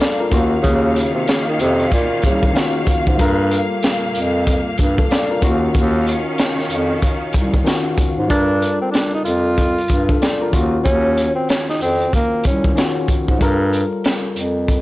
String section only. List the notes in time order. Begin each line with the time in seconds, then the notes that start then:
Already playing: A#2 A#3 F5
0.34 D#3 A#3
3.21 A#2 A#3
5.43 D#3 C#4